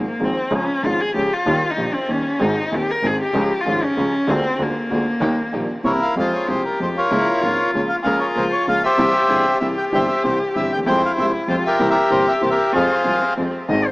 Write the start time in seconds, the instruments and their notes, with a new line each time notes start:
0.07 cello A#3
0.20 double bass G#1, grand piano G#1 G#2 F3 G#3 C4 G#4, cello C4
0.51 double bass C#2, grand piano C#2 C#3 F3 G#3 C#4 G#4
0.55 cello C#4
0.83 grand piano G#1 G#2 F3 G#3 C#4 G#4, double bass G#1, cello F4
1.00 cello G#4
1.14 grand piano C#2 C#3 F3 G#3 C#4 G#4, double bass C#2, cello G4
1.33 cello F4
1.46 double bass D#2, grand piano D#2 D#3 G3 A#3 G4
1.70 cello D#4
1.77 double bass A#1, grand piano A#1 A#2 D#3 G3 A#3 G4
1.93 cello C4
2.08 double bass D#2, grand piano D#2 D#3 G3 A#3 G4, cello C#4
2.39 double bass G#1, grand piano G#1 G#2 D#3 G#3 C4 G#4, string section C4 D#4 G#4, cello D#4
2.71 grand piano D#1 D#2 D#3 G#3 C4 G#4, double bass D#2, string section C4 D#4 G#4, cello G4
2.91 cello A#4
3.03 double bass G#1, grand piano G#1 G#2 D#3 G#3 C4 G#4, string section C4 D#4 G#4, cello G#4
3.22 cello G4
3.34 double bass C#2, grand piano C#2 C#3 F3 G#3 C#4 G#4, string section C#4 F4 G#4
3.60 cello F4
3.65 double bass G#1, grand piano G#1 G#2 F3 G#3 C#4 G#4, string section C#4 F4 G#4
3.83 cello C#4
3.96 grand piano C#2 C#3 F3 G#3 C#4 G#4, double bass C#2, string section C#4 F4 G#4
4.27 grand piano D2 D3 G#3 A#3 F4, double bass D2, string section A#3 D4 G#4, cello C4
4.58 grand piano D2 D3 G#3 A#3 F4, double bass D2, string section A#3 D4 G#4
4.62 cello A#3
4.90 double bass D2, grand piano D2 D3 G#3 A#3 F4, string section A#3 D4 G#4
5.20 double bass D#2, grand piano D#2 D#3 G3 A#3 G4, string section A#3 D#4 G4
5.52 double bass A#1, grand piano A#1 A#2 D#3 G3 A#3 G4, string section A#3 D#4 G4
5.84 double bass C2, grand piano C2 C3 E3 A#3 C4 G4, string section C4 E4 A#4, bandoneon E4 A#4 C#5
6.02 bandoneon F5
6.16 grand piano F2 F3 G#3 C4 G4, double bass F2, string section G#3 F4 G4, cello F4, bandoneon F5
6.20 bandoneon G#4 C5
6.34 bandoneon C#5
6.47 grand piano C2 C3 F3 G#3 C4 G4, double bass C2, string section G#3 F4 G4, cello G4, bandoneon C5
6.65 bandoneon A#4
6.79 grand piano F2 F3 G#3 C4 G4, double bass F2, string section G#3 F4 G4, bandoneon C5
6.97 bandoneon F4 A#4 C#5
7.10 double bass C#2, grand piano C#2 C#3 F3 A#3 C#4 G#4, string section A#3 C#4 F4, cello E4
7.41 double bass G#1, grand piano G#1 G#2 F3 A#3 C#4 G#4, string section A#3 C#4 F4, cello F4
7.73 double bass C#2, grand piano C#2 C#3 F3 A#3 C#4 G#4, string section A#3 C#4 F4, bandoneon C#5
7.89 bandoneon F5
8.03 double bass C#2, grand piano C#2 C#3 F3 A#3 C#4 G#4, string section A#3 C#4 G#4, cello F4, bandoneon G#4 A#4 F5
8.20 bandoneon C#5
8.35 double bass C#2, grand piano C#2 C#3 F3 A#3 C#4 G#4, string section A#3 C#4 G#4, bandoneon C5
8.52 bandoneon C#5
8.66 double bass C#2, grand piano C#2 C#3 F3 A#3 C#4 G#4, string section A#3 C#4 G#4, bandoneon F5
8.84 bandoneon G4 C5 E5
8.97 double bass C2, grand piano C2 C3 E3 G3 C4 G4, string section C4 E4 G4, cello G4
9.28 double bass G1, grand piano G1 G2 E3 G3 C4 G4, string section C4 E4 G4, cello G#4
9.46 cello G4
9.60 grand piano C2 C3 E3 G3 C4 G4, double bass C2, string section C4 E4 G4, bandoneon E5
9.78 bandoneon G5
9.92 grand piano G1 G2 E3 G3 C4 G4, double bass G1, string section C4 E4 G4, bandoneon C5 E5 G5
10.08 bandoneon E5
10.24 grand piano C2 C3 E3 G3 C4 G4, double bass C2, string section C4 E4 G4, bandoneon C5
10.55 grand piano G1 G2 E3 G3 C4 G4, double bass G1, string section C4 E4 G4, bandoneon E5
10.72 grand piano D2, double bass D#2, bandoneon G5
10.78 grand piano D#2
10.83 grand piano E2 F2 F3 G#3 C4 G4, double bass F2, string section G#3 F4 G4, cello E4, bandoneon G5
10.89 bandoneon C5
11.06 bandoneon F5
11.18 grand piano C2 C3 F3 G#3 C4 G4, double bass C2, string section G#3 F4 G4, bandoneon E5
11.47 grand piano F2 F3 G#3 C4 G4, double bass F2, string section G#3 F4 G4, cello F4, bandoneon C5
11.66 bandoneon G4 A#4 E5
11.79 grand piano C2 C3 E3 A#3 C4 G4, double bass C2, string section C4 E4 A#4, cello G4
11.90 bandoneon G4 A#4 E5
12.10 grand piano G1 G2 E3 A#3 C4 G4, double bass G1, string section C4 E4 A#4, bandoneon C5
12.28 bandoneon E5
12.41 grand piano C2 C3 E3 A#3 C4 G4, double bass C2, string section C4 E4 A#4, bandoneon C5
12.50 bandoneon G4 A#4 E5
12.72 grand piano F2 F3 G#3 C4 G#4, double bass F2, string section C4 F4 G#4, cello F4, bandoneon G#4 C5 F5
13.04 grand piano C2 C3 F3 G#3 C4 G#4, double bass C2, string section C4 F4 G#4, cello F4
13.20 cello C4
13.37 grand piano F2 F3 G#3 C4 G#4, double bass F2, string section C4 F4 G#4
13.69 grand piano G#1 G#2 D#3 G#3 C4 G#4, double bass G#1, cello D#5
13.85 cello C5